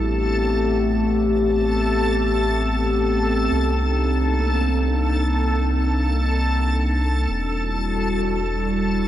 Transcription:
Already playing: sub bass A1, ambient pad A3 B3 C4 G4, synth texture A4 A5
3.51 sub bass C2, ambient pad A#3 D4 D#4
7.28 sub bass E1, ambient pad G3 E4 F#4, synth texture A4 A5

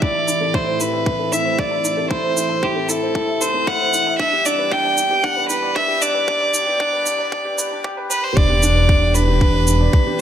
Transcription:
Already playing: analog synth pad E3 G4
0.02 analog synth pad A2 C4, felt piano E4, violin D5, kick
0.15 felt piano E5
0.28 felt piano E4, shaker
0.41 felt piano A4
0.54 felt piano E4, violin C5, kick
0.67 felt piano C5
0.80 felt piano E4, violin B4, shaker
0.93 felt piano E5
1.06 felt piano E4, kick
1.19 felt piano A4
1.32 felt piano E4, violin E5, shaker
1.45 felt piano C5
1.59 violin D5, kick
1.71 felt piano E5
1.84 felt piano E4, shaker
1.97 felt piano A4
2.10 felt piano E4, violin C5, kick
2.23 felt piano C5
2.36 felt piano E4, shaker
2.49 felt piano E5
2.63 felt piano E4, violin G4, kick
2.76 felt piano A4
2.89 felt piano E4, violin A4, shaker
3.02 felt piano C5
3.15 felt piano E4, kick
3.28 felt piano E5
3.41 felt piano E4, violin C5, shaker
3.54 felt piano A4
3.67 felt piano E4, violin F#5, kick
3.80 felt piano C5
3.93 felt piano E4, shaker
4.07 felt piano E5
4.19 analog synth pad G2 E3 B3 G4, felt piano D4, violin E5, kick
4.33 felt piano G4
4.45 felt piano D4, violin D5, shaker
4.59 felt piano B4
4.72 felt piano D4, violin G5, kick
4.85 felt piano D5
4.97 felt piano D4, shaker
5.11 felt piano G4
5.24 felt piano D4, violin F#5, kick
5.36 felt piano B4
5.49 felt piano D4, violin B4, shaker
5.62 felt piano D5
5.75 felt piano D4, violin E5, kick
5.88 felt piano G4
6.01 felt piano D4, violin D5, shaker
6.14 felt piano B4
6.27 felt piano D4, kick
6.41 felt piano D5
6.54 felt piano D4, shaker
6.67 felt piano G4
6.80 felt piano D4, kick
6.93 felt piano B4
7.06 felt piano D4, shaker
7.19 felt piano D5
7.32 felt piano D4, kick
7.45 felt piano G4
7.58 felt piano B4, shaker
7.71 felt piano D4
7.84 felt piano G4, kick
7.97 felt piano B4
8.10 felt piano B4, violin B4, shaker
8.23 felt piano B4, violin C5
8.36 detuned saw bass E1, analog synth pad E3 B3 D4 G4, felt piano D4, violin D5, kick
8.50 felt piano G4
8.63 felt piano D4, shaker
8.76 felt piano B4
8.89 felt piano D4, kick
9.02 felt piano D5
9.15 felt piano D4, violin B4, shaker
9.29 felt piano G4
9.41 felt piano D4, kick
9.54 felt piano B4
9.67 felt piano D4, shaker
9.81 felt piano D5
9.93 felt piano D4, kick
10.07 felt piano G4

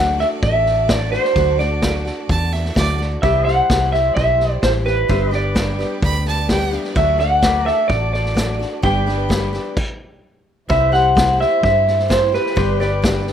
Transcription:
Already playing: fingered electric bass D2, steel-string acoustic guitar F#3 A3 D4, violin section F#4 A4 D5, clean electric guitar F#5
0.00 steel-string acoustic guitar F#4
0.18 steel-string acoustic guitar A3 D4 F#4, clean electric guitar E5, snare
0.42 fingered electric bass A1, clean electric guitar E5, kick, snare
0.66 snare
0.88 steel-string acoustic guitar F#3 A3 D4 F#4, clean electric guitar D5, kick, snare, hi-hat pedal
1.12 steel-string acoustic guitar A3 D4 F#4, clean electric guitar C5, snare
1.24 snare
1.36 fingered electric bass D2, steel-string acoustic guitar D3 F#3 A3 D4 F#4, kick, snare
1.59 steel-string acoustic guitar A3 D4 F#4, clean electric guitar D5, snare
1.82 steel-string acoustic guitar F#3 A3 D4 F#4, kick, snare, hi-hat pedal
2.05 steel-string acoustic guitar A3 D4 F#4, snare
2.29 fingered electric bass E2, fiddle A5, kick, snare
2.52 fiddle E5, snare
2.65 snare
2.75 fingered electric bass D2, steel-string acoustic guitar F#3 A3 D4 F#4, fiddle D5, kick, snare, hi-hat pedal
2.99 steel-string acoustic guitar A3 D4 F#4, snare
3.22 fingered electric bass C2, steel-string acoustic guitar C3 E3 G3 E4 G4, violin section E4 G4 C5, pedal steel guitar B4 D5, clean electric guitar E5, kick, snare
3.43 steel-string acoustic guitar E4 G4, pedal steel guitar C5, clean electric guitar F#5
3.48 steel-string acoustic guitar G3, pedal steel guitar E5, snare
3.69 fingered electric bass C2, steel-string acoustic guitar E3 G3 E4 G4, kick, snare, hi-hat pedal
3.92 steel-string acoustic guitar G3 E4 G4, clean electric guitar E5, snare
4.15 fingered electric bass B1, clean electric guitar E5, kick, snare
4.40 snare
4.62 fingered electric bass A1, steel-string acoustic guitar E3 G3 E4 G4, clean electric guitar C5, kick, snare, hi-hat pedal
4.85 steel-string acoustic guitar G3 E4 G4, clean electric guitar B4, snare
5.08 fingered electric bass G1, steel-string acoustic guitar G2 D3 G3 B3 D4 G4, violin section G3 G4 B4 D5, pedal steel guitar C5 E5, kick, snare
5.30 steel-string acoustic guitar G3 B3 D4 G4, pedal steel guitar B4, snare
5.35 clean electric guitar D5, pedal steel guitar D5
5.55 steel-string acoustic guitar G3 B3 D4 G4, kick, snare, hi-hat pedal
5.79 steel-string acoustic guitar G3 B3 D4 G4, snare
6.02 fingered electric bass D2, fiddle B5, kick, snare
6.26 fiddle A5, snare
6.49 steel-string acoustic guitar G3 B3 D4 G4, fiddle G5, kick, snare, hi-hat pedal
6.72 steel-string acoustic guitar G3 B3 D4 G4, snare
6.84 snare
6.95 fingered electric bass D2, steel-string acoustic guitar D3 F#3 A3 D4 F#4, violin section F#4 A4, clean electric guitar E5, kick, snare
7.18 steel-string acoustic guitar A3 D4 F#4, clean electric guitar F#5, snare
7.42 steel-string acoustic guitar F#3 A3 D4 F#4, pedal steel guitar B4 D5, kick, snare, hi-hat pedal
7.66 steel-string acoustic guitar A3 D4 F#4, pedal steel guitar A4, clean electric guitar E5, snare
7.88 fingered electric bass A1, clean electric guitar D5, kick, snare
8.13 clean electric guitar D5, snare
8.25 snare
8.34 steel-string acoustic guitar F#3 A3 D4 F#4, kick, snare, hi-hat pedal
8.59 steel-string acoustic guitar A3 D4 F#4, snare
8.82 fingered electric bass G1, steel-string acoustic guitar G2 D3 G3 B3 D4 G4, violin section G3 G4 B4 D5, pedal steel guitar B4 D5, clean electric guitar G5, kick, snare
9.06 steel-string acoustic guitar G3 B3 D4 G4, snare
9.29 steel-string acoustic guitar G3 B3 D4 G4, kick, snare, hi-hat pedal
9.53 steel-string acoustic guitar G3 B3 D4 G4, snare
9.77 kick, crash
10.69 fingered electric bass C2, steel-string acoustic guitar C3 G3 C4 E4 G4, violin section E4 G4 C5, pedal steel guitar B4 E5, clean electric guitar E5, kick, snare
10.90 steel-string acoustic guitar C4 E4 G4, pedal steel guitar C5, clean electric guitar F#5, snare
11.15 steel-string acoustic guitar G3 C4 E4 G4, kick, snare, hi-hat pedal
11.38 steel-string acoustic guitar C4 E4 G4, clean electric guitar E5, snare
11.63 fingered electric bass G2, clean electric guitar E5, kick, snare
11.87 snare
11.99 snare
12.08 steel-string acoustic guitar G3 C4 E4 G4, clean electric guitar C5, kick, snare, hi-hat pedal
12.32 steel-string acoustic guitar C4 E4 G4, clean electric guitar B4, snare
12.46 snare
12.55 fingered electric bass G1, steel-string acoustic guitar G2 D3 G3 B3 D4 G4, violin section G3 B4 D5, pedal steel guitar C5 D5, kick, snare
12.77 steel-string acoustic guitar B3 D4 G4, pedal steel guitar B4, clean electric guitar D5, snare
12.82 steel-string acoustic guitar G3
13.02 steel-string acoustic guitar G3 B3 D4 G4, kick, snare, hi-hat pedal
13.27 steel-string acoustic guitar G3 B3 D4 G4, snare

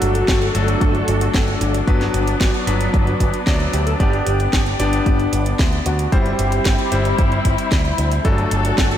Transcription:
Already playing: electric grand piano F#3 A3 D4 A4, string section D4 F#4 A4, analog synth lead F#4
0.02 picked electric bass G1, closed hi-hat
0.15 closed hi-hat
0.28 picked electric bass G1, kick, snare, closed hi-hat
0.42 closed hi-hat
0.55 picked electric bass G1, electric grand piano F#3 A3 D4 A4, analog synth lead D4, closed hi-hat
0.68 closed hi-hat
0.81 picked electric bass G1, kick, closed hi-hat
0.95 closed hi-hat
1.08 picked electric bass G1, closed hi-hat
1.21 closed hi-hat
1.34 picked electric bass G1, kick, snare, closed hi-hat
1.48 closed hi-hat
1.61 picked electric bass G1, analog synth lead D4, closed hi-hat
1.74 closed hi-hat
1.87 picked electric bass G1, string section F#3 B3, electric grand piano F#3 B3 D4 B4, analog synth lead F#4, kick, closed hi-hat
2.01 snare, closed hi-hat
2.14 picked electric bass G1, closed hi-hat
2.27 closed hi-hat
2.41 picked electric bass G1, analog synth lead F#4, kick, snare, closed hi-hat
2.54 closed hi-hat
2.67 picked electric bass G1, electric grand piano F#3 B3 D4 B4, closed hi-hat
2.81 closed hi-hat
2.94 picked electric bass G1, kick, closed hi-hat
3.07 closed hi-hat
3.20 picked electric bass G1, kick, closed hi-hat
3.34 closed hi-hat
3.47 picked electric bass D2, electric grand piano F#3 B3 D4 D5, kick, snare, closed hi-hat
3.60 closed hi-hat
3.73 picked electric bass D2, analog synth lead G4, closed hi-hat
3.87 analog synth lead A4, closed hi-hat
4.00 picked electric bass G1, electric grand piano B3 D4 G4 D5, string section B3, analog synth lead G4, kick, closed hi-hat
4.13 closed hi-hat
4.27 picked electric bass G1, closed hi-hat
4.40 closed hi-hat
4.53 picked electric bass G1, kick, snare, closed hi-hat
4.66 closed hi-hat
4.80 picked electric bass G1, electric grand piano B3 D4 G4 D5, analog synth lead D4, closed hi-hat
4.93 closed hi-hat
5.06 picked electric bass G1, kick, closed hi-hat
5.19 closed hi-hat
5.33 picked electric bass G1, closed hi-hat
5.46 closed hi-hat
5.59 picked electric bass D2, kick, snare, closed hi-hat
5.73 closed hi-hat
5.86 picked electric bass D2, analog synth lead F#4, closed hi-hat
5.99 closed hi-hat
6.12 picked electric bass G1, electric grand piano G3 C4 E4 C5, string section C4 E4, analog synth lead G4, kick, closed hi-hat
6.26 closed hi-hat
6.39 picked electric bass G1, closed hi-hat
6.52 closed hi-hat
6.65 picked electric bass G1, analog synth lead G4, kick, snare, closed hi-hat
6.79 closed hi-hat
6.92 picked electric bass G1, electric grand piano G3 C4 E4 C5, closed hi-hat
7.05 closed hi-hat
7.18 picked electric bass G1, kick, closed hi-hat
7.32 closed hi-hat
7.45 picked electric bass G1, kick, closed hi-hat
7.58 closed hi-hat
7.72 picked electric bass D2, kick, snare, closed hi-hat
7.85 closed hi-hat
7.98 picked electric bass D2, closed hi-hat
8.12 closed hi-hat
8.25 picked electric bass G1, electric grand piano F#3 A3 D4 A4, string section D4 F#4 A4, kick, closed hi-hat
8.38 closed hi-hat
8.51 picked electric bass G1, closed hi-hat
8.65 closed hi-hat
8.78 picked electric bass G1, analog synth lead F#4, kick, snare, closed hi-hat
8.91 closed hi-hat

